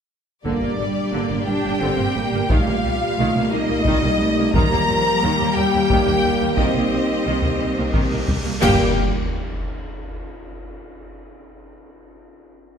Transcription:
0.45 0.52 G1 soft
0.45 4.50 A#2 soft
0.45 0.61 D3 soft
0.45 4.50 G3 soft
0.45 0.77 A#3 soft
0.45 1.43 D4 medium
0.45 4.50 G4 soft
0.45 1.43 D5 medium
0.45 1.44 D5 soft
0.45 taiko medium
0.62 0.69 G1 soft
0.62 0.69 A#3 soft
0.79 0.86 G1 soft
0.79 0.86 G3 soft
0.79 1.13 G3 soft
1.13 1.21 G1 soft
1.13 1.29 D3 soft
1.13 1.48 A#3 soft
1.31 1.37 G1 soft
1.31 1.38 A#3 soft
1.47 1.54 G1 soft
1.47 1.54 G3 soft
1.47 1.81 D4 soft
1.47 2.50 G4 medium
1.47 2.47 G5 medium
1.47 2.50 G5 medium
1.65 1.72 G1 soft
1.65 1.72 A#3 soft
1.81 1.89 G1 medium
1.81 1.97 D3 medium
1.81 2.16 C4 soft
1.98 2.05 G1 soft
1.98 2.05 A#3 soft
2.15 2.23 G1 soft
2.15 2.22 G3 soft
2.15 2.50 A#3 medium
2.33 2.40 G1 soft
2.33 2.39 A#3 soft
2.48 2.57 C2 medium
2.48 2.66 D#3 medium
2.48 2.83 A3 soft
2.48 3.49 F4 medium
2.48 3.52 F5 medium
2.48 taiko medium
2.67 2.74 C2 soft
2.67 2.74 A#3 soft
2.84 2.91 C2 soft
2.84 3.18 G3 medium
2.84 2.92 G3 soft
3.18 3.25 C2 medium
3.18 3.34 D#3 medium
3.18 3.52 A3 medium
3.35 3.41 C2 soft
3.35 3.43 A#3 soft
3.50 3.59 C2 medium
3.50 3.60 G3 medium
3.50 3.86 A#3 medium
3.50 4.54 D#4 medium
3.50 4.54 D#5 medium
3.68 3.75 C2 soft
3.68 3.76 A#3 medium
3.85 3.93 C2 medium
3.85 4.02 D#3 medium
3.85 4.20 G3 medium
3.85 taiko medium
4.03 4.10 C2 medium
4.03 4.10 A#3 medium
4.19 4.27 C2 medium
4.19 4.27 G3 medium
4.19 4.54 A3 medium
4.37 4.44 C2 medium
4.37 4.45 A#3 medium
4.53 4.61 D#2 medium
4.53 4.70 D#3 medium
4.53 8.26 G3 medium
4.53 4.88 G3 medium
4.53 8.27 A#3 medium
4.53 8.39 G4 medium
4.53 5.54 A#4 loud
4.53 5.54 A#5 medium
4.53 taiko loud
4.71 4.78 D#2 medium
4.71 4.78 A#3 medium
4.88 4.95 D#2 medium
4.88 5.22 F3 medium
4.88 4.95 G3 soft
5.22 5.29 D#2 medium
5.22 5.38 D#3 medium
5.22 6.59 G3 medium
5.39 5.46 D#2 medium
5.39 5.47 A#3 soft
5.56 5.63 D#2 medium
5.56 5.64 G3 medium
5.56 6.58 G4 medium
5.56 6.58 G5 medium
5.73 5.80 D#2 soft
5.73 5.81 A#3 medium
5.90 5.97 D#2 medium
5.90 6.07 D#3 medium
5.90 taiko medium
6.07 6.14 D#2 soft
6.07 6.15 A#3 soft
6.24 6.31 D#2 soft
6.24 6.31 G3 soft
6.41 6.48 D#2 soft
6.41 6.48 A#3 soft
6.57 6.65 C2 medium
6.57 6.74 D#3 medium
6.57 8.09 C4 medium
6.57 8.25 D#4 medium
6.57 8.25 D#5 medium
6.57 8.29 D#5 medium
6.57 taiko medium
6.57 cymbal swell soft
6.75 6.82 C2 soft
6.75 6.83 A#3 soft
6.93 6.99 C2 soft
6.93 7.00 G3 soft
7.26 7.33 C2 medium
7.26 7.42 D#3 medium
7.43 7.51 C2 soft
7.43 7.50 A#3 soft
7.43 taiko low soft
7.61 7.68 C2 soft
7.61 7.68 G3 soft
7.78 7.85 C2 soft
7.78 7.85 A#3 soft
7.94 8.02 C2 medium
7.94 8.10 D#3 medium
7.94 taiko medium
8.11 8.18 C2 soft
8.11 8.18 A#3 soft
8.28 8.36 C2 soft
8.28 8.35 G3 soft
8.28 taiko low medium
8.45 8.53 C2 soft
8.45 8.52 A#3 soft
8.61 9.00 G1 medium
8.61 9.01 G2 medium
8.61 8.92 G3 medium
8.61 8.92 A#3 medium
8.61 9.00 A#3 medium
8.61 8.92 G4 loud
8.61 9.00 G4 medium
8.61 9.00 G5 medium
8.61 9.01 G5 medium
8.61 concert bass drum medium
8.61 crash medium
8.61 impact medium

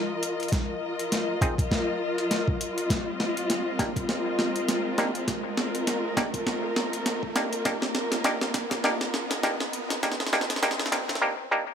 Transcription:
0.00 11.21 F4 medium
0.00 2.90 A#4 medium
0.00 11.22 D#5 medium
0.00 riser medium
0.23 closed hi-hat medium
0.40 closed hi-hat soft
0.43 closed hi-hat soft
0.48 kick loud
0.48 closed hi-hat soft
0.53 snare medium
0.53 closed hi-hat medium
0.99 closed hi-hat medium
1.12 snare medium
1.12 closed hi-hat medium
1.41 1.55 C4 loud
1.41 1.55 D#4 medium
1.41 1.55 F4 medium
1.41 1.55 G#4 loud
1.41 kick loud
1.41 closed hi-hat medium
1.58 kick loud
1.58 closed hi-hat soft
1.71 kick medium
1.71 snare medium
2.18 closed hi-hat medium
2.31 snare medium
2.31 closed hi-hat medium
2.48 kick loud
2.61 closed hi-hat medium
2.78 closed hi-hat medium
2.89 9.57 C4 medium
2.89 kick loud
2.89 snare medium
2.89 closed hi-hat medium
3.20 snare medium
3.37 closed hi-hat medium
3.50 snare medium
3.50 closed hi-hat medium
3.68 11.22 A#4 medium
3.79 3.92 A#3 medium
3.79 3.92 D4 medium
3.79 3.92 D#4 medium
3.79 3.92 G4 loud
3.79 kick loud
3.79 snare medium
3.79 closed hi-hat medium
3.96 kick loud
3.96 closed hi-hat soft
4.09 snare medium
4.39 snare medium
4.56 closed hi-hat medium
4.69 snare medium
4.69 closed hi-hat medium
4.98 5.11 A#3 medium
4.98 5.11 D4 medium
4.98 5.11 D#4 medium
4.98 5.11 G4 loud
4.98 snare medium
4.98 closed hi-hat medium
5.15 closed hi-hat soft
5.28 kick loud
5.28 snare medium
5.28 closed hi-hat medium
5.57 snare medium
5.75 closed hi-hat soft
5.87 snare medium
5.87 closed hi-hat medium
6.17 6.30 A#3 medium
6.17 6.30 D4 medium
6.17 6.30 D#4 medium
6.17 6.30 G4 loud
6.17 kick loud
6.17 snare medium
6.17 closed hi-hat medium
6.34 kick loud
6.34 closed hi-hat soft
6.46 kick medium
6.46 snare medium
6.76 snare medium
6.93 closed hi-hat medium
7.06 snare medium
7.06 closed hi-hat medium
7.23 kick loud
7.36 7.49 A#3 loud
7.36 7.49 D4 medium
7.36 7.49 D#4 medium
7.36 7.49 G4 loud
7.36 snare medium
7.36 closed hi-hat medium
7.53 closed hi-hat medium
7.65 7.78 A#3 medium
7.65 7.78 D4 medium
7.65 7.78 D#4 medium
7.65 7.78 G4 loud
7.65 kick loud
7.65 snare medium
7.65 closed hi-hat medium
7.82 snare medium
7.95 snare medium
8.12 snare medium
8.12 closed hi-hat medium
8.24 8.38 A#3 loud
8.24 8.38 D4 medium
8.24 8.38 D#4 medium
8.24 8.38 G4 loud
8.24 snare loud
8.24 closed hi-hat medium
8.41 snare medium
8.54 kick loud
8.54 snare loud
8.54 closed hi-hat medium
8.71 kick loud
8.71 snare medium
8.71 closed hi-hat medium
8.84 8.97 A#3 loud
8.84 8.97 D4 medium
8.84 8.97 D#4 medium
8.84 8.97 G4 loud
8.84 snare loud
9.01 snare medium
9.14 snare loud
9.31 snare medium
9.31 closed hi-hat medium
9.43 9.57 A#3 loud
9.43 9.57 D4 medium
9.43 9.57 D#4 medium
9.43 9.57 G4 loud
9.43 snare loud
9.43 closed hi-hat medium
9.60 snare medium
9.73 closed hi-hat medium
9.90 snare loud
9.90 closed hi-hat medium
10.03 10.16 A#3 medium
10.03 10.16 D4 medium
10.03 10.16 D#4 medium
10.03 10.16 G4 loud
10.03 kick loud
10.03 snare loud
10.03 closed hi-hat medium
10.12 snare medium
10.20 snare medium
10.27 snare medium
10.33 10.46 A#3 medium
10.33 10.46 D4 medium
10.33 10.46 D#4 medium
10.33 10.46 G4 loud
10.33 snare loud
10.33 closed hi-hat soft
10.41 snare medium
10.50 snare medium
10.50 closed hi-hat medium
10.56 snare medium
10.62 10.76 A#3 loud
10.62 10.76 D4 medium
10.62 10.76 D#4 medium
10.62 10.76 G4 loud
10.62 snare loud
10.62 closed hi-hat medium
10.71 snare loud
10.79 snare medium
10.86 snare medium
10.92 11.05 A#3 loud
10.92 11.05 D4 medium
10.92 11.05 D#4 medium
10.92 11.05 G4 loud
10.92 kick loud
10.92 snare loud
10.92 closed hi-hat medium
11.09 kick loud
11.09 snare medium
11.09 closed hi-hat medium
11.15 snare medium
11.22 11.35 A#3 loud
11.22 11.35 D4 medium
11.22 11.35 D#4 medium
11.22 11.35 G4 loud
11.51 11.65 A#3 loud
11.51 11.65 D4 medium
11.51 11.65 D#4 medium
11.51 11.65 G4 loud

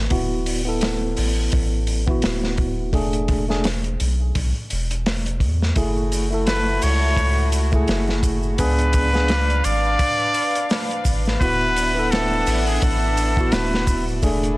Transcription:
0.10 1.14 D1 medium
0.10 0.61 B3 medium
0.10 0.62 E4 medium
0.10 0.62 F#4 medium
0.10 kick loud
0.10 open hi-hat medium
0.46 open hi-hat medium
0.65 2.02 B3 medium
0.65 2.03 E4 medium
0.65 2.04 A4 medium
0.81 snare loud
0.81 open hi-hat medium
1.16 1.49 A1 medium
1.16 open hi-hat medium
1.52 2.21 A1 medium
1.52 kick loud
1.52 open hi-hat medium
1.87 open hi-hat medium
2.07 2.90 B3 medium
2.07 2.91 E4 medium
2.07 2.91 F#4 medium
2.07 kick medium
2.22 2.92 D1 medium
2.22 snare loud
2.22 open hi-hat medium
2.44 snare soft
2.57 kick medium
2.57 open hi-hat medium
2.93 3.97 E1 medium
2.93 3.44 A3 medium
2.93 3.44 D4 medium
2.93 3.45 G#4 loud
2.93 kick loud
2.93 open hi-hat medium
3.13 closed hi-hat soft
3.28 kick loud
3.28 open hi-hat medium
3.49 3.65 A3 medium
3.49 3.65 D4 medium
3.49 3.66 G#4 medium
3.49 snare soft
3.64 snare loud
3.64 open hi-hat medium
3.84 closed hi-hat soft
4.00 4.32 B1 medium
4.00 open hi-hat medium
4.35 4.53 B1 loud
4.35 kick medium
4.35 open hi-hat medium
4.70 5.42 E1 medium
4.70 open hi-hat medium
4.91 closed hi-hat soft
5.06 snare medium
5.06 open hi-hat medium
5.26 closed hi-hat soft
5.40 5.72 E2 medium
5.40 kick medium
5.40 open hi-hat medium
5.62 snare soft
5.76 6.79 F#1 medium
5.76 6.27 A3 medium
5.76 8.56 A3 medium
5.76 6.27 E4 medium
5.76 8.56 E4 medium
5.76 8.57 F#4 medium
5.76 6.28 G#4 medium
5.76 kick medium
5.76 open hi-hat medium
5.76 maracas soft
5.97 maracas soft
6.12 open hi-hat medium
6.12 maracas medium
6.31 7.67 A3 medium
6.31 7.68 E4 medium
6.31 7.69 A4 medium
6.31 maracas soft
6.47 6.85 B4 loud
6.47 snare loud
6.47 open hi-hat medium
6.47 maracas soft
6.68 maracas soft
6.82 7.14 C#2 loud
6.82 7.53 C#5 loud
6.82 open hi-hat medium
6.82 maracas medium
7.02 maracas soft
7.17 7.85 C#2 medium
7.17 kick loud
7.17 open hi-hat medium
7.17 maracas soft
7.37 maracas soft
7.52 open hi-hat medium
7.52 maracas medium
7.72 8.54 A3 medium
7.72 8.55 E4 medium
7.72 8.56 G#4 medium
7.72 kick medium
7.72 maracas soft
7.88 8.56 F#1 medium
7.88 snare medium
7.88 open hi-hat medium
7.88 maracas soft
8.08 snare medium
8.08 maracas soft
8.23 kick medium
8.23 open hi-hat medium
8.23 maracas medium
8.43 maracas soft
8.58 9.62 C#2 loud
8.58 9.09 B3 medium
8.58 11.38 D4 medium
8.58 9.10 D4 medium
8.58 9.10 G#4 loud
8.58 9.66 B4 loud
8.58 14.20 B4 medium
8.58 11.38 D5 medium
8.58 11.39 F5 medium
8.58 kick loud
8.58 open hi-hat medium
8.58 maracas medium
8.78 closed hi-hat soft
8.78 maracas soft
8.93 kick loud
8.93 open hi-hat medium
8.93 maracas medium
9.13 9.30 B3 medium
9.13 9.30 D4 medium
9.13 9.31 G#4 medium
9.13 snare soft
9.13 maracas soft
9.28 snare loud
9.28 open hi-hat medium
9.28 maracas soft
9.50 closed hi-hat soft
9.50 maracas soft
9.64 9.96 G#1 medium
9.64 11.06 D5 loud
9.64 open hi-hat medium
9.64 maracas medium
9.84 maracas soft
9.99 kick loud
9.99 open hi-hat medium
9.99 maracas medium
10.20 maracas soft
10.34 open hi-hat medium
10.34 maracas medium
10.55 closed hi-hat soft
10.55 maracas soft
10.69 snare loud
10.69 open hi-hat medium
10.69 maracas soft
10.90 closed hi-hat soft
10.90 maracas soft
11.05 11.37 G#1 medium
11.05 kick medium
11.05 open hi-hat medium
11.05 maracas medium
11.25 snare soft
11.25 maracas soft
11.39 12.44 D1 loud
11.39 11.91 B3 medium
11.39 14.20 D4 medium
11.39 11.92 E4 medium
11.39 11.92 F#4 medium
11.39 12.12 B4 loud
11.39 14.20 E5 medium
11.39 14.20 F#5 medium
11.39 kick loud
11.39 open hi-hat medium
11.39 maracas soft
11.60 maracas soft
11.76 open hi-hat medium
11.76 maracas medium
11.95 13.32 B3 medium
11.95 13.33 E4 medium
11.95 13.34 A4 medium
11.95 maracas soft
12.11 12.66 A4 loud
12.11 snare loud
12.11 open hi-hat medium
12.11 maracas soft
12.32 maracas soft
12.46 12.79 A1 medium
12.46 open hi-hat medium
12.46 maracas medium
12.66 12.84 G#4 medium
12.66 maracas soft
12.82 13.50 A1 medium
12.82 13.55 A4 loud
12.82 kick loud
12.82 open hi-hat medium
12.82 maracas medium
13.02 maracas soft
13.17 open hi-hat medium
13.17 maracas medium
13.36 14.19 B3 medium
13.36 14.20 E4 medium
13.36 14.21 F#4 medium
13.36 kick loud
13.36 maracas soft
13.52 14.20 D1 medium
13.52 14.08 B4 medium
13.52 snare loud
13.52 open hi-hat medium
13.52 maracas soft
13.73 snare medium
13.73 maracas soft
13.87 kick loud
13.87 open hi-hat medium
13.87 maracas medium
14.08 maracas soft
14.22 14.57 E1 loud
14.22 14.57 A3 medium
14.22 14.57 D4 medium
14.22 14.57 E4 medium
14.22 14.57 G#4 loud
14.22 kick loud
14.22 open hi-hat medium
14.22 maracas medium
14.43 closed hi-hat soft
14.43 maracas soft

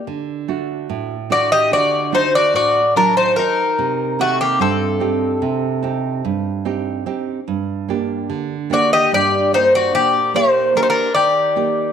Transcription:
0.07 0.87 D3 medium
0.48 1.14 A3 soft
0.48 1.15 D4 soft
0.48 1.15 F#4 medium
0.90 1.70 A2 medium
1.30 1.96 A3 soft
1.30 1.97 D4 soft
1.30 1.97 F#4 medium
1.30 1.51 F#4 medium
1.30 1.52 D5 medium
1.52 1.72 G4 medium
1.52 1.73 D#5 loud
1.71 2.52 D3 medium
1.71 2.11 F#4 medium
1.71 2.14 D5 medium
2.12 2.79 A3 medium
2.12 2.79 D4 soft
2.12 2.33 D#4 medium
2.12 2.79 F#4 medium
2.12 2.33 C5 medium
2.35 2.55 F#4 medium
2.35 2.54 D5 medium
2.54 3.34 A2 medium
2.54 2.94 F#4 medium
2.54 2.93 D5 medium
2.96 3.62 F#3 soft
2.96 3.15 D4 medium
2.96 3.36 F#4 medium
2.96 3.16 A#4 medium
2.96 3.62 D5 soft
3.17 3.36 D#4 medium
3.17 3.36 C5 medium
3.36 4.16 D#4 medium
3.36 3.70 F#4 medium
3.36 4.20 A#4 medium
3.78 4.58 C3 medium
4.19 4.39 A3 medium
4.19 4.85 C4 medium
4.19 4.85 D#4 soft
4.19 4.40 F#4 medium
4.19 4.85 G4 medium
4.41 4.60 A#3 medium
4.41 4.61 G4 medium
4.59 5.40 G2 medium
4.59 7.03 C4 medium
4.59 7.03 A4 medium
5.00 5.66 C4 medium
5.00 5.67 D#4 soft
5.00 5.67 G4 medium
5.42 6.22 C3 medium
5.82 6.49 C4 medium
5.82 6.49 D#4 soft
5.82 6.49 G4 medium
6.25 7.04 G2 medium
6.65 7.05 C4 soft
6.65 7.05 D#4 soft
6.65 7.05 G4 medium
7.06 7.39 C4 medium
7.06 7.39 D#4 soft
7.06 7.39 G4 medium
7.48 8.27 G2 medium
7.88 8.54 A#3 soft
7.88 8.55 D4 soft
7.88 8.55 G4 medium
8.29 9.09 D3 medium
8.70 9.36 A#3 soft
8.70 9.36 D4 soft
8.70 8.91 F#4 medium
8.70 9.36 G4 medium
8.70 8.93 D5 medium
8.93 9.11 G4 medium
8.93 9.11 D#5 loud
9.12 9.91 G2 medium
9.12 9.51 G4 medium
9.12 9.51 D5 loud
9.53 10.18 A#3 soft
9.53 10.18 D4 soft
9.53 9.73 D#4 medium
9.53 10.19 G4 medium
9.53 9.72 C5 medium
9.75 9.94 F#4 medium
9.75 9.93 D5 medium
9.94 10.73 A#2 medium
9.94 10.32 G4 medium
9.94 10.32 D5 loud
10.34 10.74 A#3 soft
10.34 10.73 D#4 medium
10.34 10.75 G4 medium
10.34 10.73 C5 medium
10.34 11.00 D5 soft
10.75 11.08 A#3 soft
10.75 11.08 D4 soft
10.75 10.82 D4 medium
10.75 11.08 G4 medium
10.75 10.82 A#4 medium
10.82 10.89 D#4 medium
10.82 10.89 C5 medium
10.90 11.14 D4 medium
10.90 11.14 A#4 medium
11.15 11.93 D#3 medium
11.15 11.93 G4 medium
11.15 11.93 D5 medium
11.56 11.93 A#3 soft
11.56 11.93 D#4 soft
11.56 11.93 G4 medium

